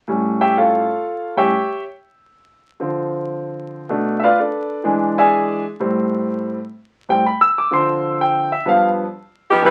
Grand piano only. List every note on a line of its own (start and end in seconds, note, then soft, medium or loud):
0.08 0.84 A2 medium
0.08 0.85 G3 soft
0.08 0.85 C#4 medium
0.41 0.56 G4 medium
0.41 0.55 C#5 medium
0.41 0.55 E5 medium
0.41 0.55 G5 medium
0.58 1.33 F4 medium
0.58 1.33 A4 medium
0.58 1.33 C#5 medium
0.58 1.33 F5 medium
1.37 1.50 A2 soft
1.37 1.50 G3 soft
1.37 1.50 C#4 soft
1.37 1.82 G4 medium
1.37 1.81 C#5 medium
1.37 1.82 E5 medium
1.37 1.81 G5 medium
2.80 3.86 D3 soft
2.80 3.87 F3 soft
2.80 3.87 C4 soft
3.89 4.26 B2 medium
3.89 4.27 A3 soft
3.89 4.27 D4 medium
4.20 4.22 E5 medium
4.20 4.38 F5 medium
4.24 4.38 F4 medium
4.24 4.38 B4 medium
4.24 4.38 D5 medium
4.39 4.84 D4 soft
4.39 4.84 A4 soft
4.39 4.83 B4 soft
4.39 5.15 D5 medium
4.84 5.61 E3 medium
4.84 5.62 G#3 soft
4.84 5.62 D4 medium
5.18 5.63 G#4 medium
5.18 5.63 D5 medium
5.18 5.63 E5 medium
5.18 5.63 G#5 medium
5.80 6.57 A2 medium
5.80 6.57 G3 soft
5.80 6.58 C4 medium
7.09 7.23 A2 soft
7.09 7.23 G3 soft
7.09 7.23 C4 soft
7.09 7.24 G5 medium
7.26 7.41 B5 medium
7.41 7.56 E6 loud
7.58 7.73 D6 medium
7.71 8.48 D3 medium
7.71 8.48 F3 medium
7.71 8.48 C4 medium
7.71 8.17 C6 medium
8.21 8.52 G5 medium
8.52 8.67 E5 medium
8.65 9.03 G2 medium
8.65 9.03 F3 medium
8.65 9.04 B3 medium
8.65 8.88 F5 medium
9.62 9.71 C2 medium
9.62 9.71 E3 medium